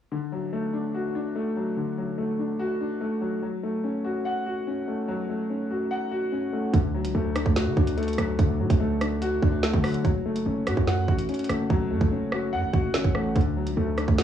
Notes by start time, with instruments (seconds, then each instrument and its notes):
0.11 grand piano D3
0.32 grand piano F#3
0.53 grand piano A3
0.73 grand piano D4
0.94 grand piano F#4
1.15 grand piano D4
1.35 grand piano A3
1.57 grand piano F#3
1.77 grand piano D3
1.98 grand piano F#3
2.18 grand piano A3
2.39 grand piano D4
2.59 grand piano F#4
2.81 grand piano D4
3.01 grand piano A3
3.21 grand piano F#3
3.42 grand piano F#3
3.63 grand piano A3
3.84 grand piano C#4
4.05 grand piano F#4
4.25 grand piano F#5
4.46 grand piano F#4
4.67 grand piano C#4
4.88 grand piano A3
5.08 grand piano F#3
5.29 grand piano A3
5.50 grand piano C#4
5.70 grand piano F#4
5.91 grand piano F#5
6.11 grand piano F#4
6.32 grand piano C#4
6.53 grand piano A3
6.73 808-style bass D2, grand piano D3, kick, closed hi-hat
6.94 grand piano F#3
7.04 808-style bass C#2, closed hi-hat
7.15 808-style bass D2, grand piano A3
7.35 grand piano D4, cross-stick, closed hi-hat
7.46 808-style bass D2, kick
7.56 grand piano F#4, snare, closed hi-hat
7.67 808-style bass D3
7.77 808-style bass D2, grand piano D4, kick
7.87 closed hi-hat
7.98 grand piano A3, closed hi-hat
8.03 closed hi-hat
8.08 closed hi-hat
8.13 closed hi-hat
8.18 808-style bass D2, grand piano F#3, cross-stick, closed hi-hat
8.39 808-style bass D2, grand piano D3, kick, closed hi-hat
8.60 808-style bass A2, grand piano F#3
8.70 808-style bass D2, kick, closed hi-hat
8.80 grand piano A3
9.01 grand piano D4, cross-stick, closed hi-hat
9.22 grand piano F#4, closed hi-hat
9.43 808-style bass D2, grand piano D4, kick
9.63 grand piano A3, snare, closed hi-hat
9.74 808-style bass D3, kick
9.84 grand piano F#3, cross-stick, open hi-hat
9.94 closed hi-hat
10.05 808-style bass F#1, grand piano F#3, kick, closed hi-hat
10.26 grand piano A3
10.36 closed hi-hat
10.46 808-style bass F#1, grand piano C#4
10.67 808-style bass A2, grand piano F#4, cross-stick, closed hi-hat
10.77 808-style bass F#2, kick
10.87 grand piano F#5, snare, closed hi-hat
11.08 808-style bass A1, grand piano F#4, kick
11.18 closed hi-hat
11.29 grand piano C#4, closed hi-hat
11.34 closed hi-hat
11.39 closed hi-hat
11.44 closed hi-hat
11.49 808-style bass F#1, grand piano A3, cross-stick, closed hi-hat
11.70 808-style bass F#1, grand piano F#3, kick
11.91 808-style bass F#2, grand piano A3
12.01 808-style bass F#1, kick
12.12 grand piano C#4
12.32 grand piano F#4, cross-stick
12.53 808-style bass F#2, grand piano F#5
12.63 808-style bass F#1
12.73 808-style bass F#1, grand piano F#4, kick
12.94 808-style bass G#1, grand piano C#4, snare
13.04 808-style bass A1, kick
13.15 grand piano A3, cross-stick
13.36 808-style bass D2, grand piano D3, kick, closed hi-hat
13.41 closed hi-hat
13.56 grand piano F#3
13.67 808-style bass C#2, closed hi-hat
13.77 808-style bass D2, grand piano A3
13.97 grand piano D4, cross-stick, closed hi-hat
14.08 808-style bass D2, kick
14.18 grand piano F#4, snare, closed hi-hat